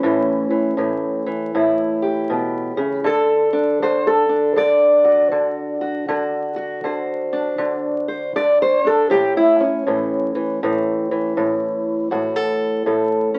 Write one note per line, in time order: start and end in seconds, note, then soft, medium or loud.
0.00 0.76 A2 medium
0.00 1.31 C#4 medium
0.04 0.49 E3 medium
0.50 0.77 E3 soft
0.77 1.53 A2 medium
0.77 1.25 E3 soft
1.26 3.06 E3 soft
1.55 3.02 A2 medium
1.55 3.02 E4 soft
2.02 3.03 G4 soft
2.30 2.77 B2 medium
2.77 3.06 C#3 medium
3.04 3.82 D3 medium
3.04 3.82 A4 medium
3.53 4.29 D4 soft
3.82 4.56 D3 medium
3.82 4.07 C5 medium
4.07 4.57 A4 medium
4.29 6.05 D4 soft
4.56 5.30 D3 medium
4.56 6.84 D5 medium
5.04 5.80 F#4 soft
5.32 6.04 D3 medium
5.81 6.05 F#4 medium
6.08 6.83 D3 medium
6.08 6.55 F#4 soft
6.56 8.85 F#4 soft
6.84 7.57 D3 medium
6.84 8.07 C5 soft
7.33 8.83 D4 soft
7.58 8.34 D3 medium
8.08 8.36 C5 soft
8.36 9.08 D3 medium
8.36 8.61 D5 medium
8.62 8.86 C5 medium
8.84 9.08 D4 soft
8.84 9.10 A4 medium
9.10 9.86 A2 medium
9.10 9.36 G4 medium
9.37 9.61 E4 medium
9.60 12.10 C#4 soft
9.87 10.62 A2 medium
9.87 10.35 E3 soft
10.35 10.63 E3 soft
10.63 11.36 A2 medium
10.63 11.11 E3 soft
11.11 13.39 E3 soft
11.37 12.09 A2 medium
12.11 12.85 A2 medium
12.11 12.36 F#4 medium
12.36 12.86 A4 soft
12.86 13.39 A2 medium
12.86 13.39 A4 soft
13.34 13.39 C#4 soft